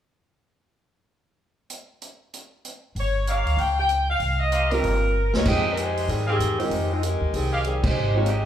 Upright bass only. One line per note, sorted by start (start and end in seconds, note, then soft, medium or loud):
2.95 3.43 G1 medium
3.46 3.56 D2 medium
3.57 4.17 C#2 medium
4.20 4.80 C2 medium
4.83 5.30 G1 medium
5.34 5.44 C2 medium
5.45 6.05 F2 medium
6.08 6.37 G#2 medium
6.39 6.68 E2 medium
6.70 7.17 F2 medium
7.21 7.32 D#2 medium
7.33 7.80 C2 medium
7.83 7.95 C3 medium
7.95 8.45 G#1 medium